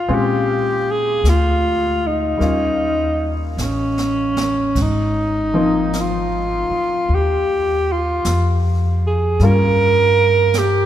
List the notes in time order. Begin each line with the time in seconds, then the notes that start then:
Already playing: F4 G4
0.08 A#2 G#3 C4 C#4 F4, brush sweep
0.15 G4
0.91 G#4
1.23 D2, brush sweep, snare, hi-hat pedal
1.29 F4
2.07 D#4
2.38 D#2 G3 A#3 C#4, brush sweep, snare
2.43 F4
3.57 A1, snare, hi-hat pedal
3.63 C#4
3.98 snare
4.37 snare
4.75 G#1, brush sweep, kick, snare, ride
4.82 D#4
5.54 F3 A#3 C4 D#4
5.93 brush sweep, snare, hi-hat pedal
6.01 F4
6.70 muted upright bass stroke
7.09 D#2, brush sweep
7.15 G4
7.92 F4
8.25 F2, brush sweep, snare, hi-hat pedal
9.07 G#4
9.39 G2 G3 A#3 C#4 F4, brush sweep, snare
9.45 A#4
10.54 brush sweep, snare, hi-hat pedal
10.58 G4